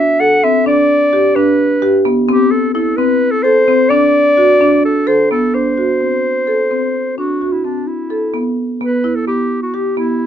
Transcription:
0, 0, Header, 1, 3, 480
1, 0, Start_track
1, 0, Tempo, 465477
1, 688, Time_signature, 7, 3, 24, 8
1, 10586, End_track
2, 0, Start_track
2, 0, Title_t, "Clarinet"
2, 0, Program_c, 0, 71
2, 0, Note_on_c, 0, 76, 83
2, 207, Note_on_c, 0, 78, 85
2, 222, Note_off_c, 0, 76, 0
2, 452, Note_on_c, 0, 76, 81
2, 467, Note_off_c, 0, 78, 0
2, 689, Note_off_c, 0, 76, 0
2, 693, Note_on_c, 0, 74, 87
2, 1397, Note_on_c, 0, 71, 70
2, 1412, Note_off_c, 0, 74, 0
2, 2119, Note_off_c, 0, 71, 0
2, 2364, Note_on_c, 0, 67, 80
2, 2592, Note_on_c, 0, 69, 75
2, 2607, Note_off_c, 0, 67, 0
2, 2816, Note_off_c, 0, 69, 0
2, 2822, Note_on_c, 0, 69, 71
2, 3062, Note_on_c, 0, 71, 83
2, 3077, Note_off_c, 0, 69, 0
2, 3416, Note_on_c, 0, 69, 85
2, 3431, Note_off_c, 0, 71, 0
2, 3539, Note_on_c, 0, 72, 89
2, 3555, Note_off_c, 0, 69, 0
2, 4013, Note_on_c, 0, 74, 97
2, 4029, Note_off_c, 0, 72, 0
2, 4984, Note_off_c, 0, 74, 0
2, 5002, Note_on_c, 0, 69, 81
2, 5233, Note_on_c, 0, 72, 78
2, 5248, Note_off_c, 0, 69, 0
2, 5470, Note_off_c, 0, 72, 0
2, 5476, Note_on_c, 0, 69, 79
2, 5719, Note_on_c, 0, 72, 72
2, 5735, Note_off_c, 0, 69, 0
2, 7396, Note_off_c, 0, 72, 0
2, 7402, Note_on_c, 0, 66, 61
2, 7762, Note_on_c, 0, 64, 56
2, 7778, Note_off_c, 0, 66, 0
2, 7885, Note_on_c, 0, 62, 51
2, 7901, Note_off_c, 0, 64, 0
2, 8119, Note_on_c, 0, 64, 54
2, 8135, Note_off_c, 0, 62, 0
2, 8842, Note_off_c, 0, 64, 0
2, 9082, Note_on_c, 0, 71, 70
2, 9441, Note_on_c, 0, 69, 64
2, 9457, Note_off_c, 0, 71, 0
2, 9556, Note_off_c, 0, 69, 0
2, 9563, Note_on_c, 0, 67, 67
2, 9899, Note_off_c, 0, 67, 0
2, 9922, Note_on_c, 0, 66, 59
2, 10046, Note_on_c, 0, 67, 63
2, 10062, Note_off_c, 0, 66, 0
2, 10283, Note_off_c, 0, 67, 0
2, 10289, Note_on_c, 0, 64, 65
2, 10586, Note_off_c, 0, 64, 0
2, 10586, End_track
3, 0, Start_track
3, 0, Title_t, "Marimba"
3, 0, Program_c, 1, 12
3, 205, Note_on_c, 1, 69, 70
3, 390, Note_off_c, 1, 69, 0
3, 450, Note_on_c, 1, 60, 66
3, 633, Note_off_c, 1, 60, 0
3, 683, Note_on_c, 1, 62, 73
3, 1052, Note_off_c, 1, 62, 0
3, 1164, Note_on_c, 1, 67, 66
3, 1348, Note_off_c, 1, 67, 0
3, 1404, Note_on_c, 1, 62, 80
3, 1771, Note_off_c, 1, 62, 0
3, 1878, Note_on_c, 1, 67, 79
3, 2064, Note_off_c, 1, 67, 0
3, 2116, Note_on_c, 1, 59, 67
3, 2302, Note_off_c, 1, 59, 0
3, 2357, Note_on_c, 1, 60, 85
3, 2726, Note_off_c, 1, 60, 0
3, 2835, Note_on_c, 1, 64, 67
3, 3021, Note_off_c, 1, 64, 0
3, 3074, Note_on_c, 1, 60, 71
3, 3443, Note_off_c, 1, 60, 0
3, 3551, Note_on_c, 1, 69, 73
3, 3737, Note_off_c, 1, 69, 0
3, 3793, Note_on_c, 1, 60, 69
3, 3979, Note_off_c, 1, 60, 0
3, 4028, Note_on_c, 1, 62, 72
3, 4399, Note_off_c, 1, 62, 0
3, 4509, Note_on_c, 1, 66, 66
3, 4696, Note_off_c, 1, 66, 0
3, 4751, Note_on_c, 1, 62, 77
3, 5121, Note_off_c, 1, 62, 0
3, 5228, Note_on_c, 1, 69, 68
3, 5415, Note_off_c, 1, 69, 0
3, 5475, Note_on_c, 1, 59, 67
3, 5659, Note_off_c, 1, 59, 0
3, 5716, Note_on_c, 1, 62, 53
3, 5900, Note_off_c, 1, 62, 0
3, 5955, Note_on_c, 1, 66, 54
3, 6139, Note_off_c, 1, 66, 0
3, 6192, Note_on_c, 1, 60, 46
3, 6562, Note_off_c, 1, 60, 0
3, 6674, Note_on_c, 1, 69, 52
3, 6860, Note_off_c, 1, 69, 0
3, 6916, Note_on_c, 1, 60, 51
3, 7285, Note_off_c, 1, 60, 0
3, 7403, Note_on_c, 1, 62, 52
3, 7586, Note_off_c, 1, 62, 0
3, 7645, Note_on_c, 1, 66, 51
3, 7827, Note_off_c, 1, 66, 0
3, 7883, Note_on_c, 1, 60, 44
3, 8250, Note_off_c, 1, 60, 0
3, 8356, Note_on_c, 1, 69, 53
3, 8542, Note_off_c, 1, 69, 0
3, 8597, Note_on_c, 1, 59, 60
3, 8968, Note_off_c, 1, 59, 0
3, 9083, Note_on_c, 1, 59, 61
3, 9267, Note_off_c, 1, 59, 0
3, 9323, Note_on_c, 1, 64, 57
3, 9508, Note_off_c, 1, 64, 0
3, 9563, Note_on_c, 1, 59, 47
3, 9933, Note_off_c, 1, 59, 0
3, 10042, Note_on_c, 1, 67, 58
3, 10228, Note_off_c, 1, 67, 0
3, 10280, Note_on_c, 1, 59, 58
3, 10586, Note_off_c, 1, 59, 0
3, 10586, End_track
0, 0, End_of_file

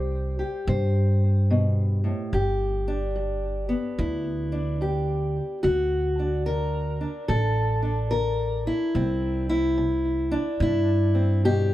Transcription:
0, 0, Header, 1, 3, 480
1, 0, Start_track
1, 0, Key_signature, 1, "major"
1, 0, Tempo, 827586
1, 1351, Time_signature, 4, 2, 24, 8
1, 6809, End_track
2, 0, Start_track
2, 0, Title_t, "Steel-string acoustic guitar"
2, 0, Program_c, 0, 25
2, 0, Note_on_c, 0, 48, 61
2, 0, Note_on_c, 0, 55, 43
2, 0, Note_on_c, 0, 67, 43
2, 0, Note_on_c, 0, 72, 86
2, 224, Note_off_c, 0, 67, 0
2, 226, Note_on_c, 0, 67, 45
2, 355, Note_off_c, 0, 48, 0
2, 391, Note_off_c, 0, 72, 0
2, 393, Note_on_c, 0, 48, 67
2, 398, Note_on_c, 0, 72, 44
2, 838, Note_off_c, 0, 48, 0
2, 873, Note_on_c, 0, 47, 61
2, 1181, Note_off_c, 0, 47, 0
2, 1183, Note_on_c, 0, 45, 54
2, 1335, Note_off_c, 0, 67, 0
2, 1335, Note_off_c, 0, 72, 0
2, 1352, Note_off_c, 0, 55, 0
2, 1353, Note_off_c, 0, 45, 0
2, 1353, Note_on_c, 0, 43, 67
2, 1357, Note_on_c, 0, 67, 65
2, 1669, Note_on_c, 0, 62, 55
2, 1798, Note_off_c, 0, 43, 0
2, 1831, Note_on_c, 0, 43, 61
2, 2139, Note_on_c, 0, 59, 56
2, 2276, Note_off_c, 0, 43, 0
2, 2312, Note_on_c, 0, 43, 64
2, 2313, Note_off_c, 0, 67, 0
2, 2315, Note_on_c, 0, 64, 50
2, 2615, Note_off_c, 0, 62, 0
2, 2622, Note_on_c, 0, 62, 52
2, 2757, Note_off_c, 0, 43, 0
2, 2789, Note_on_c, 0, 43, 67
2, 2791, Note_off_c, 0, 64, 0
2, 2794, Note_on_c, 0, 67, 53
2, 3235, Note_off_c, 0, 43, 0
2, 3248, Note_off_c, 0, 59, 0
2, 3250, Note_off_c, 0, 62, 0
2, 3250, Note_off_c, 0, 67, 0
2, 3265, Note_on_c, 0, 66, 82
2, 3270, Note_on_c, 0, 50, 70
2, 3592, Note_on_c, 0, 62, 43
2, 3715, Note_off_c, 0, 50, 0
2, 3745, Note_off_c, 0, 66, 0
2, 3747, Note_on_c, 0, 70, 79
2, 3760, Note_on_c, 0, 50, 57
2, 4057, Note_off_c, 0, 62, 0
2, 4064, Note_on_c, 0, 62, 40
2, 4199, Note_off_c, 0, 50, 0
2, 4222, Note_off_c, 0, 70, 0
2, 4224, Note_on_c, 0, 50, 64
2, 4224, Note_on_c, 0, 69, 84
2, 4531, Note_off_c, 0, 62, 0
2, 4538, Note_on_c, 0, 62, 41
2, 4671, Note_off_c, 0, 50, 0
2, 4700, Note_off_c, 0, 69, 0
2, 4702, Note_on_c, 0, 70, 90
2, 4707, Note_on_c, 0, 50, 72
2, 5013, Note_off_c, 0, 70, 0
2, 5029, Note_on_c, 0, 64, 86
2, 5153, Note_off_c, 0, 50, 0
2, 5167, Note_off_c, 0, 62, 0
2, 5194, Note_on_c, 0, 48, 69
2, 5197, Note_on_c, 0, 60, 49
2, 5497, Note_off_c, 0, 64, 0
2, 5507, Note_on_c, 0, 64, 84
2, 5636, Note_off_c, 0, 48, 0
2, 5670, Note_on_c, 0, 48, 65
2, 5980, Note_off_c, 0, 60, 0
2, 5982, Note_on_c, 0, 62, 77
2, 6115, Note_off_c, 0, 48, 0
2, 6149, Note_on_c, 0, 48, 65
2, 6153, Note_off_c, 0, 64, 0
2, 6162, Note_on_c, 0, 64, 83
2, 6460, Note_off_c, 0, 62, 0
2, 6465, Note_on_c, 0, 60, 41
2, 6595, Note_off_c, 0, 48, 0
2, 6636, Note_off_c, 0, 64, 0
2, 6639, Note_on_c, 0, 47, 61
2, 6642, Note_on_c, 0, 67, 97
2, 6809, Note_off_c, 0, 47, 0
2, 6809, Note_off_c, 0, 60, 0
2, 6809, Note_off_c, 0, 67, 0
2, 6809, End_track
3, 0, Start_track
3, 0, Title_t, "Upright bass"
3, 0, Program_c, 1, 32
3, 0, Note_on_c, 1, 36, 87
3, 243, Note_off_c, 1, 36, 0
3, 391, Note_on_c, 1, 43, 97
3, 1206, Note_off_c, 1, 43, 0
3, 1350, Note_on_c, 1, 31, 86
3, 2164, Note_off_c, 1, 31, 0
3, 2311, Note_on_c, 1, 38, 91
3, 3124, Note_off_c, 1, 38, 0
3, 3271, Note_on_c, 1, 38, 83
3, 4083, Note_off_c, 1, 38, 0
3, 4227, Note_on_c, 1, 33, 86
3, 5041, Note_off_c, 1, 33, 0
3, 5190, Note_on_c, 1, 36, 83
3, 6003, Note_off_c, 1, 36, 0
3, 6149, Note_on_c, 1, 43, 94
3, 6809, Note_off_c, 1, 43, 0
3, 6809, End_track
0, 0, End_of_file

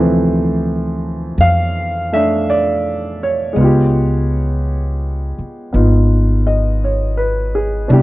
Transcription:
0, 0, Header, 1, 4, 480
1, 0, Start_track
1, 0, Tempo, 1086957
1, 1573, Time_signature, 4, 2, 24, 8
1, 3543, End_track
2, 0, Start_track
2, 0, Title_t, "Grand piano"
2, 0, Program_c, 0, 0
2, 0, Control_c, 0, 64, 127
2, 0, Note_on_c, 0, 48, 42
2, 0, Note_on_c, 0, 52, 50
2, 0, Note_on_c, 0, 53, 42
2, 0, Note_on_c, 0, 57, 38
2, 0, Note_on_c, 0, 72, 56
2, 621, Note_on_c, 0, 77, 76
2, 646, Note_off_c, 0, 72, 0
2, 931, Note_off_c, 0, 57, 0
2, 938, Note_on_c, 0, 57, 33
2, 943, Note_on_c, 0, 76, 70
2, 949, Note_off_c, 0, 77, 0
2, 950, Note_on_c, 0, 62, 39
2, 1100, Note_off_c, 0, 76, 0
2, 1103, Note_on_c, 0, 74, 61
2, 1404, Note_off_c, 0, 74, 0
2, 1427, Note_on_c, 0, 73, 56
2, 1558, Note_on_c, 0, 56, 45
2, 1573, Note_off_c, 0, 53, 0
2, 1573, Note_on_c, 0, 59, 43
2, 1575, Note_off_c, 0, 57, 0
2, 1579, Note_off_c, 0, 48, 0
2, 1579, Control_c, 0, 64, 0
2, 1581, Note_off_c, 0, 62, 0
2, 1583, Note_off_c, 0, 52, 0
2, 1591, Note_on_c, 0, 65, 43
2, 1608, Note_on_c, 0, 67, 52
2, 1667, Control_c, 0, 64, 127
2, 2522, Note_off_c, 0, 59, 0
2, 2529, Note_on_c, 0, 59, 35
2, 2533, Note_on_c, 0, 63, 34
2, 2535, Note_off_c, 0, 65, 0
2, 2541, Note_on_c, 0, 65, 38
2, 2856, Note_on_c, 0, 75, 42
2, 3015, Note_off_c, 0, 73, 0
2, 3021, Note_on_c, 0, 73, 38
2, 3101, Note_off_c, 0, 75, 0
2, 3168, Note_on_c, 0, 71, 42
2, 3318, Note_off_c, 0, 73, 0
2, 3334, Note_on_c, 0, 68, 47
2, 3416, Note_off_c, 0, 71, 0
2, 3477, Note_off_c, 0, 56, 0
2, 3480, Note_on_c, 0, 47, 45
2, 3484, Note_off_c, 0, 59, 0
2, 3485, Note_on_c, 0, 62, 44
2, 3486, Note_off_c, 0, 63, 0
2, 3489, Control_c, 0, 64, 0
2, 3490, Note_off_c, 0, 65, 0
2, 3493, Note_on_c, 0, 64, 44
2, 3495, Note_off_c, 0, 67, 0
2, 3502, Note_on_c, 0, 67, 55
2, 3543, Note_off_c, 0, 47, 0
2, 3543, Note_off_c, 0, 62, 0
2, 3543, Note_off_c, 0, 64, 0
2, 3543, Note_off_c, 0, 67, 0
2, 3543, Note_off_c, 0, 68, 0
2, 3543, End_track
3, 0, Start_track
3, 0, Title_t, "Upright bass"
3, 0, Program_c, 1, 32
3, 0, Note_on_c, 1, 38, 62
3, 593, Note_off_c, 1, 38, 0
3, 608, Note_on_c, 1, 41, 60
3, 1555, Note_off_c, 1, 41, 0
3, 1572, Note_on_c, 1, 37, 63
3, 2357, Note_off_c, 1, 37, 0
3, 2535, Note_on_c, 1, 32, 63
3, 3469, Note_off_c, 1, 32, 0
3, 3488, Note_on_c, 1, 36, 72
3, 3543, Note_off_c, 1, 36, 0
3, 3543, End_track
4, 0, Start_track
4, 0, Title_t, "Muted upright bass strokes"
4, 2378, Note_on_c, 9, 29, 32
4, 2422, Note_off_c, 9, 29, 0
4, 3543, End_track
0, 0, End_of_file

